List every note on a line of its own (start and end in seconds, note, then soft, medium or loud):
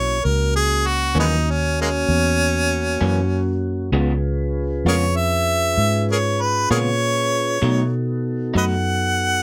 0.00 0.21 B1 medium
0.00 0.19 A#3 medium
0.00 0.19 C#4 medium
0.00 0.20 E4 medium
0.00 0.19 F#4 medium
0.00 0.26 C#5 medium
0.25 1.14 C#2 medium
0.25 3.91 A#3 medium
0.25 3.91 C#4 medium
0.25 3.91 F#4 medium
0.25 0.54 A#4 medium
0.56 0.88 G#4 medium
0.86 1.16 F#4 medium
1.15 2.05 D#2 medium
1.15 1.35 F#2 soft
1.15 1.35 E3 soft
1.15 1.34 A#3 medium
1.15 1.34 C#4 medium
1.19 1.26 G#3 medium
1.19 1.25 B3 medium
1.19 1.52 D#4 medium
1.51 1.79 C#4 medium
1.81 1.90 G#3 medium
1.81 1.89 A#3 medium
1.81 3.60 C#4 medium
2.09 2.98 E2 medium
3.01 3.91 F#2 medium
3.01 3.20 F#2 soft
3.01 3.20 E3 medium
3.01 3.20 A#3 medium
3.01 3.19 C#4 medium
3.92 4.82 C#2 medium
3.92 4.12 C#3 medium
3.92 4.12 G#3 medium
3.92 4.12 B3 medium
3.92 7.59 C#4 medium
3.92 7.59 F4 medium
3.92 4.12 F4 medium
3.92 7.59 G#4 medium
3.92 7.59 B4 medium
4.85 5.75 F2 medium
4.85 5.06 C#3 soft
4.85 5.05 G#3 medium
4.85 5.05 B3 medium
4.85 5.04 F4 medium
4.85 4.94 G#4 medium
4.85 4.96 A#4 medium
4.85 5.18 C#5 medium
5.16 6.06 E5 medium
5.78 6.67 G#2 medium
6.12 6.18 G#4 medium
6.12 6.18 A#4 medium
6.12 6.43 C#5 medium
6.41 6.71 B4 medium
6.71 7.60 A#2 medium
6.71 6.90 C#3 soft
6.71 6.90 G#3 soft
6.71 6.89 B3 medium
6.71 6.89 F4 medium
6.71 6.77 G#4 medium
6.71 6.79 A#4 medium
6.71 7.90 C#5 medium
7.61 7.81 B2 medium
7.61 8.52 B2 medium
7.61 7.81 F#3 medium
7.61 7.81 A3 medium
7.61 9.43 B3 medium
7.61 9.43 D#4 medium
7.61 7.82 D#4 medium
7.61 9.43 F#4 medium
7.61 9.43 A4 medium
8.54 9.43 F#2 medium
8.54 8.74 B2 medium
8.54 8.74 F#3 medium
8.54 8.73 A3 medium
8.54 8.73 D#4 medium
8.54 8.65 B4 medium
8.54 8.64 D#5 medium
8.54 9.43 F#5 loud